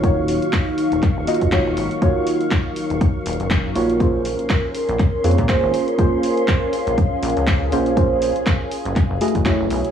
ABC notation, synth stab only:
X:1
M:4/4
L:1/8
Q:"Swing 16ths" 1/4=121
K:Ebm
V:1 name="Synth stab"
[B,EFGd]4- [B,EFGd] [B,EFGe] [B,EFGd]2 | [B,EFGd]6- [B,EFGd] [B,EFGd] | [B,DFA=c]4- [B,DFAc] [B,DFAd] [B,DFAc]2 | [B,DFA=c]6- [B,DFAc] [B,DFAc] |
[B,DFA=c]3 z2 [=A,_FG_Ae] [=A,FG_Ad]2 |]